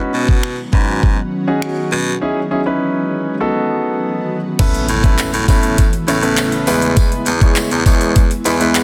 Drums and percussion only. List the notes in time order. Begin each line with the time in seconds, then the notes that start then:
0.28 kick
0.43 finger snap
0.73 kick
1.03 kick
1.62 finger snap
4.59 kick, closed hi-hat, crash, tambourine
4.74 closed hi-hat
4.89 closed hi-hat
5.04 kick, closed hi-hat
5.19 clap, closed hi-hat, tambourine
5.34 closed hi-hat
5.48 kick, closed hi-hat, tambourine
5.63 closed hi-hat
5.78 kick, closed hi-hat, tambourine
5.93 closed hi-hat
6.08 closed hi-hat, tambourine
6.23 closed hi-hat
6.37 clap, closed hi-hat, tambourine
6.52 closed hi-hat
6.67 open hi-hat, tambourine
6.82 closed hi-hat
6.97 kick, closed hi-hat, tambourine
7.12 closed hi-hat
7.26 closed hi-hat, tambourine
7.41 kick, closed hi-hat
7.56 clap, closed hi-hat, tambourine
7.71 closed hi-hat
7.86 kick, closed hi-hat, tambourine
8.01 closed hi-hat
8.16 kick, closed hi-hat, tambourine
8.31 closed hi-hat
8.45 closed hi-hat, tambourine
8.61 closed hi-hat
8.75 clap, closed hi-hat, tambourine